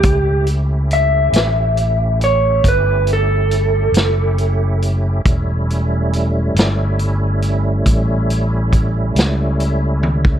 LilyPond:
<<
  \new Staff \with { instrumentName = "Clean electric guitar" } { \time 12/8 \key a \mixolydian \tempo 4. = 46 g'8 r8 e''4. cis''8 b'8 a'2 r8 | r1. | }
  \new Staff \with { instrumentName = "Tonewheel organ" } { \time 12/8 \key a \mixolydian <a cis' e' g'>1. | <g a cis' e'>1. | }
  \new Staff \with { instrumentName = "Fingered electric bass" } { \clef bass \time 12/8 \key a \mixolydian cis,4. a,,4. g,,4. fis,,4. | e,,4. g,,4. a,,4. cis,4. | }
  \new DrumStaff \with { instrumentName = "Drums" } \drummode { \time 12/8 <hh bd>8 hh8 hh8 <hh sn>8 hh8 hh8 <hh bd>8 hh8 hh8 <hh sn>8 hh8 hh8 | <hh bd>8 hh8 hh8 <hh sn>8 hh8 hh8 <hh bd>8 hh8 <hh bd>8 <hh sn>8 hh8 tommh16 bd16 | }
>>